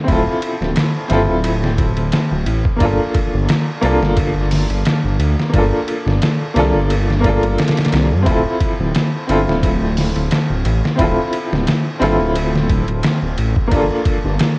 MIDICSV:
0, 0, Header, 1, 4, 480
1, 0, Start_track
1, 0, Key_signature, -1, "minor"
1, 0, Tempo, 681818
1, 59, Time_signature, 4, 2, 24, 8
1, 10269, End_track
2, 0, Start_track
2, 0, Title_t, "Upright piano"
2, 0, Program_c, 0, 0
2, 0, Control_c, 0, 64, 127
2, 0, Note_on_c, 0, 60, 82
2, 0, Note_on_c, 0, 64, 74
2, 0, Note_on_c, 0, 65, 73
2, 0, Note_on_c, 0, 69, 90
2, 25, Note_off_c, 0, 60, 0
2, 25, Note_on_c, 0, 60, 72
2, 47, Note_off_c, 0, 64, 0
2, 47, Note_on_c, 0, 64, 67
2, 66, Note_off_c, 0, 65, 0
2, 66, Note_on_c, 0, 65, 66
2, 86, Note_off_c, 0, 69, 0
2, 86, Note_on_c, 0, 69, 85
2, 736, Note_off_c, 0, 60, 0
2, 747, Note_off_c, 0, 64, 0
2, 757, Note_off_c, 0, 65, 0
2, 761, Note_on_c, 0, 60, 82
2, 767, Note_off_c, 0, 69, 0
2, 769, Note_on_c, 0, 64, 74
2, 780, Note_on_c, 0, 65, 74
2, 791, Note_on_c, 0, 69, 92
2, 889, Note_off_c, 0, 60, 0
2, 894, Note_off_c, 0, 64, 0
2, 899, Note_off_c, 0, 65, 0
2, 904, Note_off_c, 0, 69, 0
2, 1945, Note_on_c, 0, 58, 72
2, 1962, Note_on_c, 0, 62, 68
2, 1984, Note_on_c, 0, 65, 69
2, 1988, Control_c, 0, 64, 0
2, 2005, Note_on_c, 0, 69, 76
2, 2102, Control_c, 0, 64, 127
2, 2656, Note_off_c, 0, 58, 0
2, 2665, Note_off_c, 0, 62, 0
2, 2676, Note_off_c, 0, 65, 0
2, 2683, Note_on_c, 0, 58, 84
2, 2686, Note_off_c, 0, 69, 0
2, 2695, Note_on_c, 0, 62, 74
2, 2704, Note_on_c, 0, 65, 77
2, 2713, Note_on_c, 0, 69, 92
2, 2811, Note_off_c, 0, 58, 0
2, 2817, Note_off_c, 0, 62, 0
2, 2821, Note_off_c, 0, 65, 0
2, 2825, Note_off_c, 0, 69, 0
2, 3869, Note_on_c, 0, 58, 74
2, 3890, Note_on_c, 0, 62, 67
2, 3911, Note_on_c, 0, 65, 67
2, 3930, Note_on_c, 0, 69, 81
2, 4578, Note_off_c, 0, 58, 0
2, 4589, Note_off_c, 0, 62, 0
2, 4599, Note_off_c, 0, 65, 0
2, 4604, Note_on_c, 0, 58, 79
2, 4609, Note_off_c, 0, 69, 0
2, 4617, Note_on_c, 0, 62, 74
2, 4625, Note_on_c, 0, 65, 71
2, 4637, Note_on_c, 0, 69, 92
2, 4731, Note_off_c, 0, 58, 0
2, 4737, Note_off_c, 0, 62, 0
2, 4742, Note_off_c, 0, 65, 0
2, 4747, Note_off_c, 0, 69, 0
2, 5070, Note_on_c, 0, 58, 87
2, 5091, Note_on_c, 0, 62, 72
2, 5109, Note_on_c, 0, 65, 79
2, 5131, Note_on_c, 0, 69, 93
2, 5779, Note_off_c, 0, 58, 0
2, 5789, Note_off_c, 0, 62, 0
2, 5790, Note_on_c, 0, 60, 71
2, 5798, Note_off_c, 0, 65, 0
2, 5809, Note_off_c, 0, 69, 0
2, 5810, Note_on_c, 0, 64, 67
2, 5830, Control_c, 0, 64, 0
2, 5830, Note_on_c, 0, 65, 66
2, 5851, Note_on_c, 0, 69, 78
2, 5939, Control_c, 0, 64, 127
2, 6499, Note_off_c, 0, 60, 0
2, 6509, Note_off_c, 0, 64, 0
2, 6519, Note_off_c, 0, 65, 0
2, 6527, Note_on_c, 0, 60, 84
2, 6529, Note_off_c, 0, 69, 0
2, 6536, Note_on_c, 0, 64, 70
2, 6546, Note_on_c, 0, 65, 74
2, 6556, Note_on_c, 0, 69, 86
2, 6653, Note_off_c, 0, 60, 0
2, 6657, Note_off_c, 0, 64, 0
2, 6662, Note_off_c, 0, 65, 0
2, 6667, Note_off_c, 0, 69, 0
2, 7709, Note_on_c, 0, 60, 73
2, 7728, Note_on_c, 0, 64, 70
2, 7750, Note_on_c, 0, 65, 69
2, 7769, Note_on_c, 0, 69, 77
2, 8418, Note_off_c, 0, 60, 0
2, 8428, Note_off_c, 0, 64, 0
2, 8438, Note_off_c, 0, 65, 0
2, 8445, Note_on_c, 0, 60, 81
2, 8448, Note_off_c, 0, 69, 0
2, 8454, Note_on_c, 0, 64, 81
2, 8464, Note_on_c, 0, 65, 76
2, 8472, Note_on_c, 0, 69, 92
2, 8572, Note_off_c, 0, 60, 0
2, 8576, Note_off_c, 0, 64, 0
2, 8581, Note_off_c, 0, 65, 0
2, 8585, Note_off_c, 0, 69, 0
2, 9627, Note_on_c, 0, 58, 75
2, 9646, Note_on_c, 0, 62, 71
2, 9665, Note_on_c, 0, 65, 70
2, 9668, Control_c, 0, 64, 0
2, 9687, Note_on_c, 0, 69, 80
2, 9796, Control_c, 0, 64, 127
2, 10269, Note_off_c, 0, 58, 0
2, 10269, Note_off_c, 0, 62, 0
2, 10269, Note_off_c, 0, 65, 0
2, 10269, Note_off_c, 0, 69, 0
2, 10269, End_track
3, 0, Start_track
3, 0, Title_t, "Detuned saw bass"
3, 0, Program_c, 1, 39
3, 57, Note_on_c, 1, 26, 85
3, 174, Note_off_c, 1, 26, 0
3, 429, Note_on_c, 1, 26, 91
3, 525, Note_off_c, 1, 26, 0
3, 776, Note_on_c, 1, 31, 82
3, 894, Note_off_c, 1, 31, 0
3, 906, Note_on_c, 1, 26, 90
3, 1363, Note_off_c, 1, 26, 0
3, 1386, Note_on_c, 1, 26, 95
3, 1484, Note_off_c, 1, 26, 0
3, 1626, Note_on_c, 1, 26, 88
3, 1724, Note_off_c, 1, 26, 0
3, 1732, Note_on_c, 1, 33, 95
3, 1851, Note_off_c, 1, 33, 0
3, 1974, Note_on_c, 1, 31, 86
3, 2092, Note_off_c, 1, 31, 0
3, 2346, Note_on_c, 1, 31, 87
3, 2444, Note_off_c, 1, 31, 0
3, 2694, Note_on_c, 1, 36, 86
3, 2813, Note_off_c, 1, 36, 0
3, 2825, Note_on_c, 1, 31, 87
3, 3283, Note_off_c, 1, 31, 0
3, 3304, Note_on_c, 1, 31, 98
3, 3403, Note_off_c, 1, 31, 0
3, 3546, Note_on_c, 1, 31, 86
3, 3644, Note_off_c, 1, 31, 0
3, 3652, Note_on_c, 1, 38, 99
3, 3771, Note_off_c, 1, 38, 0
3, 3898, Note_on_c, 1, 31, 90
3, 4015, Note_off_c, 1, 31, 0
3, 4268, Note_on_c, 1, 31, 92
3, 4365, Note_off_c, 1, 31, 0
3, 4617, Note_on_c, 1, 36, 84
3, 4734, Note_off_c, 1, 36, 0
3, 4752, Note_on_c, 1, 31, 97
3, 5206, Note_off_c, 1, 31, 0
3, 5232, Note_on_c, 1, 31, 100
3, 5327, Note_off_c, 1, 31, 0
3, 5583, Note_on_c, 1, 36, 88
3, 5716, Note_on_c, 1, 43, 79
3, 5726, Note_off_c, 1, 36, 0
3, 5809, Note_off_c, 1, 43, 0
3, 5819, Note_on_c, 1, 26, 94
3, 5935, Note_off_c, 1, 26, 0
3, 6193, Note_on_c, 1, 26, 90
3, 6287, Note_off_c, 1, 26, 0
3, 6541, Note_on_c, 1, 31, 81
3, 6656, Note_off_c, 1, 31, 0
3, 6673, Note_on_c, 1, 26, 90
3, 7127, Note_off_c, 1, 26, 0
3, 7153, Note_on_c, 1, 26, 104
3, 7247, Note_off_c, 1, 26, 0
3, 7392, Note_on_c, 1, 26, 86
3, 7487, Note_off_c, 1, 26, 0
3, 7500, Note_on_c, 1, 33, 101
3, 7616, Note_off_c, 1, 33, 0
3, 7738, Note_on_c, 1, 26, 87
3, 7854, Note_off_c, 1, 26, 0
3, 8112, Note_on_c, 1, 26, 94
3, 8207, Note_off_c, 1, 26, 0
3, 8456, Note_on_c, 1, 31, 88
3, 8574, Note_off_c, 1, 31, 0
3, 8589, Note_on_c, 1, 26, 88
3, 9045, Note_off_c, 1, 26, 0
3, 9070, Note_on_c, 1, 26, 101
3, 9166, Note_off_c, 1, 26, 0
3, 9310, Note_on_c, 1, 26, 90
3, 9406, Note_off_c, 1, 26, 0
3, 9420, Note_on_c, 1, 33, 100
3, 9536, Note_off_c, 1, 33, 0
3, 9658, Note_on_c, 1, 31, 87
3, 9775, Note_off_c, 1, 31, 0
3, 10030, Note_on_c, 1, 31, 88
3, 10126, Note_off_c, 1, 31, 0
3, 10269, End_track
4, 0, Start_track
4, 0, Title_t, "Drums"
4, 57, Note_on_c, 9, 36, 103
4, 57, Note_on_c, 9, 51, 80
4, 127, Note_off_c, 9, 36, 0
4, 127, Note_off_c, 9, 51, 0
4, 296, Note_on_c, 9, 51, 62
4, 367, Note_off_c, 9, 51, 0
4, 438, Note_on_c, 9, 38, 43
4, 508, Note_off_c, 9, 38, 0
4, 534, Note_on_c, 9, 51, 89
4, 543, Note_on_c, 9, 38, 106
4, 604, Note_off_c, 9, 51, 0
4, 614, Note_off_c, 9, 38, 0
4, 773, Note_on_c, 9, 51, 60
4, 782, Note_on_c, 9, 38, 52
4, 844, Note_off_c, 9, 51, 0
4, 853, Note_off_c, 9, 38, 0
4, 1013, Note_on_c, 9, 51, 76
4, 1084, Note_off_c, 9, 51, 0
4, 1154, Note_on_c, 9, 38, 46
4, 1224, Note_off_c, 9, 38, 0
4, 1254, Note_on_c, 9, 36, 84
4, 1254, Note_on_c, 9, 51, 62
4, 1325, Note_off_c, 9, 36, 0
4, 1325, Note_off_c, 9, 51, 0
4, 1384, Note_on_c, 9, 51, 41
4, 1455, Note_off_c, 9, 51, 0
4, 1492, Note_on_c, 9, 51, 78
4, 1501, Note_on_c, 9, 38, 99
4, 1563, Note_off_c, 9, 51, 0
4, 1572, Note_off_c, 9, 38, 0
4, 1734, Note_on_c, 9, 51, 62
4, 1804, Note_off_c, 9, 51, 0
4, 1866, Note_on_c, 9, 36, 96
4, 1937, Note_off_c, 9, 36, 0
4, 1973, Note_on_c, 9, 51, 76
4, 1975, Note_on_c, 9, 36, 100
4, 2043, Note_off_c, 9, 51, 0
4, 2045, Note_off_c, 9, 36, 0
4, 2213, Note_on_c, 9, 51, 65
4, 2215, Note_on_c, 9, 36, 91
4, 2284, Note_off_c, 9, 51, 0
4, 2286, Note_off_c, 9, 36, 0
4, 2453, Note_on_c, 9, 51, 84
4, 2462, Note_on_c, 9, 38, 109
4, 2524, Note_off_c, 9, 51, 0
4, 2533, Note_off_c, 9, 38, 0
4, 2692, Note_on_c, 9, 51, 63
4, 2762, Note_off_c, 9, 51, 0
4, 2834, Note_on_c, 9, 38, 47
4, 2904, Note_off_c, 9, 38, 0
4, 2933, Note_on_c, 9, 51, 79
4, 2936, Note_on_c, 9, 36, 99
4, 3003, Note_off_c, 9, 51, 0
4, 3006, Note_off_c, 9, 36, 0
4, 3176, Note_on_c, 9, 46, 74
4, 3185, Note_on_c, 9, 38, 42
4, 3246, Note_off_c, 9, 46, 0
4, 3256, Note_off_c, 9, 38, 0
4, 3308, Note_on_c, 9, 51, 38
4, 3378, Note_off_c, 9, 51, 0
4, 3416, Note_on_c, 9, 51, 80
4, 3425, Note_on_c, 9, 38, 109
4, 3487, Note_off_c, 9, 51, 0
4, 3496, Note_off_c, 9, 38, 0
4, 3658, Note_on_c, 9, 51, 60
4, 3728, Note_off_c, 9, 51, 0
4, 3798, Note_on_c, 9, 38, 55
4, 3869, Note_off_c, 9, 38, 0
4, 3898, Note_on_c, 9, 36, 97
4, 3898, Note_on_c, 9, 51, 80
4, 3968, Note_off_c, 9, 36, 0
4, 3968, Note_off_c, 9, 51, 0
4, 4140, Note_on_c, 9, 51, 59
4, 4210, Note_off_c, 9, 51, 0
4, 4279, Note_on_c, 9, 38, 43
4, 4349, Note_off_c, 9, 38, 0
4, 4378, Note_on_c, 9, 51, 85
4, 4387, Note_on_c, 9, 38, 114
4, 4449, Note_off_c, 9, 51, 0
4, 4458, Note_off_c, 9, 38, 0
4, 4619, Note_on_c, 9, 51, 63
4, 4628, Note_on_c, 9, 38, 56
4, 4689, Note_off_c, 9, 51, 0
4, 4698, Note_off_c, 9, 38, 0
4, 4859, Note_on_c, 9, 51, 80
4, 4929, Note_off_c, 9, 51, 0
4, 5000, Note_on_c, 9, 38, 46
4, 5071, Note_off_c, 9, 38, 0
4, 5098, Note_on_c, 9, 36, 88
4, 5098, Note_on_c, 9, 51, 61
4, 5168, Note_off_c, 9, 36, 0
4, 5168, Note_off_c, 9, 51, 0
4, 5231, Note_on_c, 9, 51, 40
4, 5301, Note_off_c, 9, 51, 0
4, 5338, Note_on_c, 9, 51, 64
4, 5347, Note_on_c, 9, 38, 79
4, 5405, Note_off_c, 9, 51, 0
4, 5405, Note_on_c, 9, 51, 63
4, 5414, Note_off_c, 9, 38, 0
4, 5414, Note_on_c, 9, 38, 78
4, 5472, Note_off_c, 9, 51, 0
4, 5472, Note_on_c, 9, 51, 60
4, 5481, Note_off_c, 9, 38, 0
4, 5481, Note_on_c, 9, 38, 79
4, 5525, Note_off_c, 9, 51, 0
4, 5525, Note_on_c, 9, 51, 58
4, 5534, Note_off_c, 9, 38, 0
4, 5534, Note_on_c, 9, 38, 78
4, 5578, Note_off_c, 9, 51, 0
4, 5578, Note_on_c, 9, 51, 74
4, 5588, Note_off_c, 9, 38, 0
4, 5588, Note_on_c, 9, 38, 100
4, 5649, Note_off_c, 9, 51, 0
4, 5658, Note_off_c, 9, 38, 0
4, 5816, Note_on_c, 9, 51, 73
4, 5818, Note_on_c, 9, 36, 101
4, 5887, Note_off_c, 9, 51, 0
4, 5888, Note_off_c, 9, 36, 0
4, 6057, Note_on_c, 9, 51, 59
4, 6058, Note_on_c, 9, 36, 87
4, 6128, Note_off_c, 9, 51, 0
4, 6129, Note_off_c, 9, 36, 0
4, 6298, Note_on_c, 9, 51, 82
4, 6307, Note_on_c, 9, 38, 109
4, 6368, Note_off_c, 9, 51, 0
4, 6377, Note_off_c, 9, 38, 0
4, 6540, Note_on_c, 9, 51, 67
4, 6611, Note_off_c, 9, 51, 0
4, 6683, Note_on_c, 9, 38, 52
4, 6753, Note_off_c, 9, 38, 0
4, 6780, Note_on_c, 9, 36, 97
4, 6781, Note_on_c, 9, 51, 84
4, 6850, Note_off_c, 9, 36, 0
4, 6851, Note_off_c, 9, 51, 0
4, 7019, Note_on_c, 9, 46, 69
4, 7028, Note_on_c, 9, 38, 39
4, 7089, Note_off_c, 9, 46, 0
4, 7098, Note_off_c, 9, 38, 0
4, 7151, Note_on_c, 9, 51, 41
4, 7221, Note_off_c, 9, 51, 0
4, 7258, Note_on_c, 9, 51, 82
4, 7268, Note_on_c, 9, 38, 100
4, 7329, Note_off_c, 9, 51, 0
4, 7338, Note_off_c, 9, 38, 0
4, 7498, Note_on_c, 9, 51, 69
4, 7568, Note_off_c, 9, 51, 0
4, 7640, Note_on_c, 9, 38, 60
4, 7710, Note_off_c, 9, 38, 0
4, 7736, Note_on_c, 9, 51, 78
4, 7738, Note_on_c, 9, 36, 98
4, 7806, Note_off_c, 9, 51, 0
4, 7808, Note_off_c, 9, 36, 0
4, 7975, Note_on_c, 9, 51, 60
4, 8046, Note_off_c, 9, 51, 0
4, 8117, Note_on_c, 9, 38, 43
4, 8188, Note_off_c, 9, 38, 0
4, 8216, Note_on_c, 9, 51, 83
4, 8226, Note_on_c, 9, 38, 111
4, 8287, Note_off_c, 9, 51, 0
4, 8296, Note_off_c, 9, 38, 0
4, 8459, Note_on_c, 9, 51, 65
4, 8469, Note_on_c, 9, 38, 54
4, 8530, Note_off_c, 9, 51, 0
4, 8539, Note_off_c, 9, 38, 0
4, 8697, Note_on_c, 9, 51, 80
4, 8767, Note_off_c, 9, 51, 0
4, 8838, Note_on_c, 9, 38, 49
4, 8908, Note_off_c, 9, 38, 0
4, 8937, Note_on_c, 9, 36, 83
4, 8937, Note_on_c, 9, 51, 62
4, 9007, Note_off_c, 9, 36, 0
4, 9007, Note_off_c, 9, 51, 0
4, 9067, Note_on_c, 9, 51, 39
4, 9138, Note_off_c, 9, 51, 0
4, 9174, Note_on_c, 9, 51, 77
4, 9184, Note_on_c, 9, 38, 108
4, 9245, Note_off_c, 9, 51, 0
4, 9254, Note_off_c, 9, 38, 0
4, 9417, Note_on_c, 9, 51, 65
4, 9488, Note_off_c, 9, 51, 0
4, 9548, Note_on_c, 9, 36, 94
4, 9619, Note_off_c, 9, 36, 0
4, 9655, Note_on_c, 9, 51, 79
4, 9657, Note_on_c, 9, 36, 104
4, 9726, Note_off_c, 9, 51, 0
4, 9727, Note_off_c, 9, 36, 0
4, 9894, Note_on_c, 9, 51, 64
4, 9896, Note_on_c, 9, 36, 94
4, 9965, Note_off_c, 9, 51, 0
4, 9966, Note_off_c, 9, 36, 0
4, 10134, Note_on_c, 9, 51, 83
4, 10143, Note_on_c, 9, 38, 114
4, 10204, Note_off_c, 9, 51, 0
4, 10213, Note_off_c, 9, 38, 0
4, 10269, End_track
0, 0, End_of_file